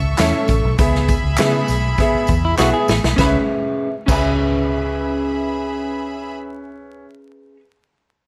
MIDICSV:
0, 0, Header, 1, 8, 480
1, 0, Start_track
1, 0, Key_signature, 4, "minor"
1, 0, Tempo, 600601
1, 624, Time_signature, 4, 2, 24, 8
1, 6609, End_track
2, 0, Start_track
2, 0, Title_t, "String section"
2, 0, Program_c, 0, 48
2, 0, Note_on_c, 0, 69, 72
2, 0, Note_on_c, 0, 76, 77
2, 0, Note_on_c, 0, 85, 78
2, 590, Note_off_c, 0, 69, 0
2, 590, Note_off_c, 0, 85, 0
2, 591, Note_off_c, 0, 76, 0
2, 636, Note_on_c, 0, 76, 78
2, 636, Note_on_c, 0, 83, 89
2, 642, Note_on_c, 0, 68, 75
2, 2519, Note_off_c, 0, 76, 0
2, 2520, Note_off_c, 0, 83, 0
2, 2522, Note_off_c, 0, 68, 0
2, 2546, Note_on_c, 0, 76, 71
2, 2550, Note_on_c, 0, 68, 72
2, 2551, Note_on_c, 0, 83, 84
2, 2680, Note_off_c, 0, 76, 0
2, 2682, Note_off_c, 0, 68, 0
2, 2682, Note_off_c, 0, 83, 0
2, 3262, Note_on_c, 0, 68, 90
2, 3262, Note_on_c, 0, 76, 94
2, 3263, Note_on_c, 0, 83, 104
2, 5071, Note_off_c, 0, 68, 0
2, 5071, Note_off_c, 0, 76, 0
2, 5072, Note_off_c, 0, 83, 0
2, 6609, End_track
3, 0, Start_track
3, 0, Title_t, "Clean electric guitar"
3, 0, Program_c, 1, 27
3, 142, Note_on_c, 1, 64, 72
3, 146, Note_on_c, 1, 69, 86
3, 147, Note_on_c, 1, 73, 91
3, 151, Note_on_c, 1, 76, 92
3, 255, Note_off_c, 1, 64, 0
3, 257, Note_off_c, 1, 69, 0
3, 258, Note_off_c, 1, 73, 0
3, 259, Note_off_c, 1, 76, 0
3, 1110, Note_on_c, 1, 64, 78
3, 1112, Note_on_c, 1, 68, 95
3, 1118, Note_on_c, 1, 71, 86
3, 1119, Note_on_c, 1, 76, 94
3, 1220, Note_off_c, 1, 64, 0
3, 1221, Note_off_c, 1, 68, 0
3, 1223, Note_off_c, 1, 71, 0
3, 1224, Note_off_c, 1, 76, 0
3, 2065, Note_on_c, 1, 64, 72
3, 2066, Note_on_c, 1, 68, 65
3, 2073, Note_on_c, 1, 71, 70
3, 2074, Note_on_c, 1, 76, 72
3, 2178, Note_off_c, 1, 64, 0
3, 2178, Note_off_c, 1, 68, 0
3, 2181, Note_off_c, 1, 71, 0
3, 2182, Note_off_c, 1, 76, 0
3, 2527, Note_on_c, 1, 61, 90
3, 2544, Note_on_c, 1, 68, 80
3, 2558, Note_on_c, 1, 71, 76
3, 2570, Note_on_c, 1, 76, 90
3, 3101, Note_off_c, 1, 61, 0
3, 3101, Note_off_c, 1, 68, 0
3, 3101, Note_off_c, 1, 71, 0
3, 3101, Note_off_c, 1, 76, 0
3, 3247, Note_on_c, 1, 61, 70
3, 3267, Note_on_c, 1, 68, 64
3, 3280, Note_on_c, 1, 71, 70
3, 3287, Note_on_c, 1, 76, 74
3, 6045, Note_off_c, 1, 61, 0
3, 6064, Note_off_c, 1, 68, 0
3, 6075, Note_off_c, 1, 71, 0
3, 6075, Note_off_c, 1, 76, 0
3, 6609, End_track
4, 0, Start_track
4, 0, Title_t, "Grand piano"
4, 0, Program_c, 2, 0
4, 142, Note_on_c, 2, 61, 82
4, 145, Note_on_c, 2, 69, 78
4, 148, Note_on_c, 2, 76, 101
4, 399, Note_off_c, 2, 61, 0
4, 400, Note_off_c, 2, 69, 0
4, 402, Note_off_c, 2, 76, 0
4, 627, Note_on_c, 2, 59, 82
4, 628, Note_on_c, 2, 68, 73
4, 635, Note_on_c, 2, 76, 86
4, 882, Note_off_c, 2, 59, 0
4, 882, Note_off_c, 2, 68, 0
4, 886, Note_off_c, 2, 76, 0
4, 1105, Note_on_c, 2, 59, 76
4, 1105, Note_on_c, 2, 68, 75
4, 1114, Note_on_c, 2, 76, 77
4, 1361, Note_off_c, 2, 59, 0
4, 1361, Note_off_c, 2, 68, 0
4, 1365, Note_off_c, 2, 76, 0
4, 1596, Note_on_c, 2, 59, 87
4, 1597, Note_on_c, 2, 68, 79
4, 1600, Note_on_c, 2, 76, 99
4, 1847, Note_off_c, 2, 59, 0
4, 1847, Note_off_c, 2, 68, 0
4, 1849, Note_off_c, 2, 76, 0
4, 2060, Note_on_c, 2, 59, 81
4, 2064, Note_on_c, 2, 68, 75
4, 2067, Note_on_c, 2, 76, 88
4, 2319, Note_off_c, 2, 59, 0
4, 2321, Note_off_c, 2, 68, 0
4, 2322, Note_off_c, 2, 76, 0
4, 2532, Note_on_c, 2, 61, 86
4, 2548, Note_on_c, 2, 71, 76
4, 2561, Note_on_c, 2, 76, 82
4, 2672, Note_off_c, 2, 61, 0
4, 2681, Note_off_c, 2, 71, 0
4, 2688, Note_off_c, 2, 76, 0
4, 3254, Note_on_c, 2, 61, 72
4, 3269, Note_on_c, 2, 71, 68
4, 3286, Note_on_c, 2, 76, 88
4, 5627, Note_off_c, 2, 61, 0
4, 5634, Note_off_c, 2, 71, 0
4, 5643, Note_off_c, 2, 76, 0
4, 6609, End_track
5, 0, Start_track
5, 0, Title_t, "Clean electric guitar"
5, 0, Program_c, 3, 27
5, 1956, Note_on_c, 3, 64, 71
5, 2063, Note_off_c, 3, 64, 0
5, 2067, Note_on_c, 3, 66, 82
5, 2180, Note_off_c, 3, 66, 0
5, 2184, Note_on_c, 3, 68, 72
5, 2527, Note_off_c, 3, 68, 0
5, 6609, End_track
6, 0, Start_track
6, 0, Title_t, "Fingered electric bass"
6, 0, Program_c, 4, 33
6, 0, Note_on_c, 4, 37, 85
6, 106, Note_off_c, 4, 37, 0
6, 152, Note_on_c, 4, 40, 90
6, 248, Note_off_c, 4, 40, 0
6, 389, Note_on_c, 4, 33, 77
6, 486, Note_off_c, 4, 33, 0
6, 518, Note_on_c, 4, 35, 89
6, 612, Note_off_c, 4, 35, 0
6, 633, Note_on_c, 4, 37, 93
6, 927, Note_off_c, 4, 37, 0
6, 989, Note_on_c, 4, 37, 77
6, 1086, Note_off_c, 4, 37, 0
6, 1107, Note_on_c, 4, 49, 103
6, 1305, Note_off_c, 4, 49, 0
6, 1350, Note_on_c, 4, 35, 80
6, 1547, Note_off_c, 4, 35, 0
6, 1830, Note_on_c, 4, 40, 82
6, 2027, Note_off_c, 4, 40, 0
6, 2070, Note_on_c, 4, 35, 78
6, 2167, Note_off_c, 4, 35, 0
6, 2306, Note_on_c, 4, 33, 71
6, 2405, Note_off_c, 4, 33, 0
6, 2429, Note_on_c, 4, 35, 86
6, 2527, Note_off_c, 4, 35, 0
6, 2540, Note_on_c, 4, 37, 89
6, 2677, Note_off_c, 4, 37, 0
6, 3266, Note_on_c, 4, 37, 92
6, 5633, Note_off_c, 4, 37, 0
6, 6609, End_track
7, 0, Start_track
7, 0, Title_t, "Muted fingered electric bass strokes"
7, 1715, Note_on_c, 9, 29, 44
7, 1795, Note_off_c, 9, 29, 0
7, 6609, End_track
8, 0, Start_track
8, 0, Title_t, "Drums"
8, 146, Note_on_c, 9, 39, 81
8, 146, Note_on_c, 9, 54, 76
8, 153, Note_on_c, 9, 42, 84
8, 157, Note_on_c, 9, 38, 116
8, 226, Note_off_c, 9, 39, 0
8, 226, Note_off_c, 9, 54, 0
8, 233, Note_off_c, 9, 42, 0
8, 237, Note_off_c, 9, 38, 0
8, 383, Note_on_c, 9, 54, 52
8, 390, Note_on_c, 9, 36, 89
8, 392, Note_on_c, 9, 42, 72
8, 463, Note_off_c, 9, 54, 0
8, 470, Note_off_c, 9, 36, 0
8, 472, Note_off_c, 9, 42, 0
8, 626, Note_on_c, 9, 54, 50
8, 629, Note_on_c, 9, 36, 117
8, 632, Note_on_c, 9, 42, 102
8, 706, Note_off_c, 9, 54, 0
8, 709, Note_off_c, 9, 36, 0
8, 712, Note_off_c, 9, 42, 0
8, 761, Note_on_c, 9, 38, 33
8, 841, Note_off_c, 9, 38, 0
8, 866, Note_on_c, 9, 42, 69
8, 869, Note_on_c, 9, 36, 88
8, 872, Note_on_c, 9, 54, 36
8, 946, Note_off_c, 9, 42, 0
8, 949, Note_off_c, 9, 36, 0
8, 952, Note_off_c, 9, 54, 0
8, 1100, Note_on_c, 9, 39, 104
8, 1100, Note_on_c, 9, 54, 103
8, 1113, Note_on_c, 9, 42, 90
8, 1122, Note_on_c, 9, 38, 112
8, 1180, Note_off_c, 9, 39, 0
8, 1180, Note_off_c, 9, 54, 0
8, 1193, Note_off_c, 9, 42, 0
8, 1202, Note_off_c, 9, 38, 0
8, 1342, Note_on_c, 9, 54, 54
8, 1358, Note_on_c, 9, 42, 58
8, 1422, Note_off_c, 9, 54, 0
8, 1438, Note_off_c, 9, 42, 0
8, 1580, Note_on_c, 9, 54, 35
8, 1585, Note_on_c, 9, 36, 85
8, 1599, Note_on_c, 9, 42, 75
8, 1660, Note_off_c, 9, 54, 0
8, 1665, Note_off_c, 9, 36, 0
8, 1679, Note_off_c, 9, 42, 0
8, 1814, Note_on_c, 9, 54, 53
8, 1822, Note_on_c, 9, 42, 55
8, 1829, Note_on_c, 9, 36, 86
8, 1894, Note_off_c, 9, 54, 0
8, 1902, Note_off_c, 9, 42, 0
8, 1909, Note_off_c, 9, 36, 0
8, 2067, Note_on_c, 9, 39, 81
8, 2067, Note_on_c, 9, 54, 86
8, 2076, Note_on_c, 9, 38, 64
8, 2146, Note_off_c, 9, 39, 0
8, 2146, Note_off_c, 9, 54, 0
8, 2156, Note_off_c, 9, 38, 0
8, 2303, Note_on_c, 9, 54, 56
8, 2313, Note_on_c, 9, 38, 95
8, 2383, Note_off_c, 9, 54, 0
8, 2393, Note_off_c, 9, 38, 0
8, 2433, Note_on_c, 9, 38, 89
8, 2513, Note_off_c, 9, 38, 0
8, 2543, Note_on_c, 9, 36, 110
8, 2545, Note_on_c, 9, 54, 67
8, 2548, Note_on_c, 9, 38, 82
8, 2623, Note_off_c, 9, 36, 0
8, 2625, Note_off_c, 9, 54, 0
8, 2628, Note_off_c, 9, 38, 0
8, 3262, Note_on_c, 9, 36, 105
8, 3263, Note_on_c, 9, 49, 78
8, 3267, Note_on_c, 9, 54, 86
8, 3342, Note_off_c, 9, 36, 0
8, 3343, Note_off_c, 9, 49, 0
8, 3347, Note_off_c, 9, 54, 0
8, 6609, End_track
0, 0, End_of_file